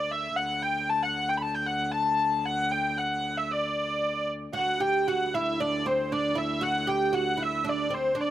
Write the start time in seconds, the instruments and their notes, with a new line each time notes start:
Already playing: viola da gamba D2, hurdy-gurdy D5
0.11 hurdy-gurdy E5
0.36 viola da gamba D2, hurdy-gurdy F#5
0.62 hurdy-gurdy G5
0.89 hurdy-gurdy A5
1.03 hurdy-gurdy F#5
1.29 hurdy-gurdy G5
1.37 hurdy-gurdy B5
1.42 hurdy-gurdy A5
1.55 hurdy-gurdy G5
1.66 hurdy-gurdy F#5
1.92 hurdy-gurdy A5
2.45 hurdy-gurdy F#5
2.71 hurdy-gurdy G5
2.97 hurdy-gurdy F#5
3.37 hurdy-gurdy E5
3.51 hurdy-gurdy D5
4.53 viola da gamba D2, oud F#4, hurdy-gurdy F#5
4.80 oud G4, hurdy-gurdy G5
5.08 oud F#4, hurdy-gurdy F#5
5.34 oud E4, hurdy-gurdy E5
5.60 oud D4, hurdy-gurdy D5
5.86 oud C4, hurdy-gurdy C5
6.12 oud D4, hurdy-gurdy D5
6.35 oud E4, hurdy-gurdy E5
6.61 oud F#4, hurdy-gurdy F#5
6.87 oud G4, hurdy-gurdy G5
7.13 oud F#4, hurdy-gurdy F#5
7.37 oud E4
7.43 hurdy-gurdy E5
7.65 oud D4
7.69 hurdy-gurdy D5
7.90 oud C4, hurdy-gurdy C5
8.15 oud D4
8.21 hurdy-gurdy D5